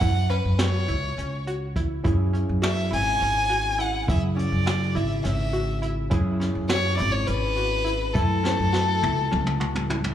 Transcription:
Already playing: violin F#5
0.01 upright bass F#2, synth arpeggio sound E4, kick, closed hi-hat
0.30 synth arpeggio sound C#4, violin B4, closed hi-hat
0.45 upright bass F#2
0.59 synth arpeggio sound F#4, violin C#5, snare, closed hi-hat
0.88 upright bass C#2, synth arpeggio sound E4, closed hi-hat
1.17 upright bass C#2, synth arpeggio sound C#4, closed hi-hat
1.47 synth arpeggio sound F#4, closed hi-hat
1.76 synth arpeggio sound E4, kick, closed hi-hat
2.04 upright bass F#2, tine electric piano C#4 E4 G#4, synth arpeggio sound E4, kick, closed hi-hat
2.33 synth arpeggio sound C#4, closed hi-hat
2.49 upright bass F#2
2.62 synth arpeggio sound F#4, violin E5, snare, closed hi-hat
2.91 upright bass G#1, synth arpeggio sound E4, violin G#5, closed hi-hat
3.20 upright bass G#1, synth arpeggio sound C#4, closed hi-hat
3.50 synth arpeggio sound F#4, closed hi-hat
3.78 synth arpeggio sound E4, violin F#5, closed hi-hat
4.07 upright bass F#2, tine electric piano C#3 E4 G#4, synth arpeggio sound E4, violin E5, kick, closed hi-hat
4.37 synth arpeggio sound C#4, violin D5, closed hi-hat
4.52 upright bass F#2
4.66 synth arpeggio sound F#4, snare, closed hi-hat
4.95 upright bass G#1, synth arpeggio sound E4, violin E5, closed hi-hat
5.24 upright bass G#1, synth arpeggio sound C#4, violin E5, snare, closed hi-hat
5.53 synth arpeggio sound F#4, closed hi-hat
5.82 synth arpeggio sound E4, closed hi-hat
6.10 upright bass F#2, tine electric piano C#4 E4 G#4, synth arpeggio sound E4, kick, closed hi-hat
6.40 synth arpeggio sound C#4, snare, closed hi-hat
6.55 upright bass F#2
6.69 synth arpeggio sound F#4, violin C#5, snare, closed hi-hat
6.98 upright bass G#1, synth arpeggio sound E4, violin D5, closed hi-hat
7.12 violin C#5
7.27 upright bass G#1, synth arpeggio sound C#4, violin B4, closed hi-hat
7.56 synth arpeggio sound F#4, closed hi-hat
7.85 synth arpeggio sound E4, closed hi-hat
8.14 upright bass F#2, tine electric piano A3 E4 A4, synth arpeggio sound E4, violin A4, kick, closed hi-hat
8.44 synth arpeggio sound C#4, snare
8.59 upright bass F#2
8.73 synth arpeggio sound F#4, snare
9.03 upright bass C#2, synth arpeggio sound E4, high tom
9.31 upright bass C#2, synth arpeggio sound C#4, mid tom
9.46 mid tom
9.60 synth arpeggio sound F#4, mid tom
9.75 floor tom
9.90 synth arpeggio sound E4, floor tom
10.04 floor tom

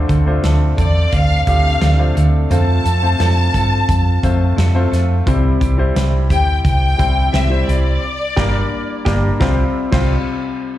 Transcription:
Already playing: grand piano D3 A3 D4 F4 C5
0.08 fingered electric bass D2, clean electric guitar C4 D4 A4, kick, closed hi-hat
0.26 grand piano A3 D4 F4 C5
0.42 fingered electric bass D2, clean electric guitar F3 C4 D4 A4, snare, closed hi-hat
0.77 fingered electric bass E2, clean electric guitar C4 D4 A4, violin section D5, kick, closed hi-hat
1.13 fingered electric bass D2, violin section F5, kick, closed hi-hat
1.47 fingered electric bass D2, grand piano A3 D4 F4 G4, violin section F5, kick, closed hi-hat
1.81 fingered electric bass D2, clean electric guitar F3 C4 D4 A4, snare, closed hi-hat
1.98 grand piano A3 D4 F4 C5
2.15 fingered electric bass D2, clean electric guitar C4 D4 A4, closed hi-hat
2.50 fingered electric bass F2, clean electric guitar F3 C4 F4 A4, grand piano A3 C4 F4 C5, violin section A5, closed hi-hat
2.84 fingered electric bass F2, clean electric guitar C4 F4 A4, closed hi-hat
3.02 grand piano A3 C4 F4 C5
3.19 fingered electric bass F2, clean electric guitar F3 C4 F4 A4, snare, closed hi-hat
3.54 fingered electric bass G2, clean electric guitar C4 F4 A4, kick, closed hi-hat
3.89 fingered electric bass F2, kick, closed hi-hat
4.23 fingered electric bass F2, grand piano A3 C4 F4 C5, kick, closed hi-hat
4.57 fingered electric bass F2, clean electric guitar F3 C4 F4 A4, snare, closed hi-hat
4.74 grand piano A3 C4 F4 C5
4.91 fingered electric bass F2, clean electric guitar C4 F4 A4, snare, closed hi-hat
5.26 fingered electric bass C2, clean electric guitar C3 G3 C4 E4 G4, grand piano C3 G3 C4 E4 C5, kick, closed hi-hat
5.60 fingered electric bass C2, clean electric guitar C4 E4 G4, kick, closed hi-hat
5.78 grand piano G3 C4 E4 C5
5.95 fingered electric bass C2, clean electric guitar G3 C4 E4 G4, snare, closed hi-hat
6.29 fingered electric bass D2, clean electric guitar C4 E4 G4, violin section G5, kick, closed hi-hat
6.65 fingered electric bass C2, violin section G5, kick, closed hi-hat
6.98 fingered electric bass C2, grand piano G3 C4 E4 C5, kick, closed hi-hat
7.33 fingered electric bass C2, clean electric guitar G3 C4 E4 G4, violin section E5, snare, closed hi-hat
7.50 grand piano G3 C4 E4 C5
7.67 fingered electric bass C2, clean electric guitar C4 E4 G4, violin section D5, closed hi-hat
8.37 fingered electric bass G1, grand piano G3 A#3 D4 A#4, clean electric guitar G3 A#3 D4 G4, kick, snare, crash
9.05 fingered electric bass G1, grand piano G3 A#3 D4 A#4, clean electric guitar G3 A#3 D4 G4, kick, snare
9.40 fingered electric bass C2, clean electric guitar C3 F3 C4 F4 G4, grand piano C3 G3 C4 F4 C5, kick, snare
9.92 fingered electric bass C2, clean electric guitar F3 C4 F4 G4, grand piano G3 C4 F4 C5, kick, snare, crash

